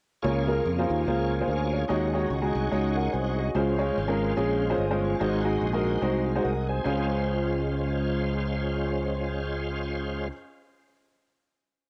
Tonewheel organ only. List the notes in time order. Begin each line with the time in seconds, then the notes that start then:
0.22 A#3 F4 G#4 C#5
1.88 G#3 D#4 F#4 C#5
3.54 G#3 C#4 F4 C5
4.79 D#5
5.04 F4 C#5
5.19 G#3 D#4 F#4 C5
6.26 G#4 F5
6.44 F#4 D#5
6.68 C4 G#4
6.84 G#3 C#4 F4 C5